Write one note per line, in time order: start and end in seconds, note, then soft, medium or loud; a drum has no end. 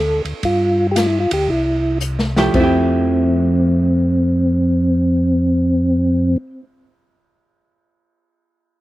0.00 0.21 D2 medium
0.00 0.22 A4 medium
0.25 0.34 D2 soft
0.25 ride soft
0.43 1.27 G2 medium
0.43 0.87 F4 medium
0.43 kick soft
0.43 ride medium
0.91 0.96 G4 medium
0.96 1.07 F4 medium
0.96 snare medium
0.96 hi-hat pedal medium
0.96 ride medium
1.06 1.19 E4 medium
1.20 1.32 F4 medium
1.31 1.48 D2 medium
1.31 1.50 G4 medium
1.31 ride medium
1.49 2.50 C2 medium
1.49 1.98 E4 medium
1.49 kick soft
2.00 hi-hat pedal medium
2.19 snare medium
2.36 2.50 F3 medium
2.36 2.55 A3 medium
2.36 2.59 E4 medium
2.36 2.62 G4 medium
2.36 snare medium
2.51 6.36 F2 medium
2.51 6.38 F3 medium
2.51 6.38 C4 medium
2.51 kick soft
2.51 crash medium
2.56 6.42 A3 medium
2.60 6.46 E4 medium
2.60 6.50 G4 medium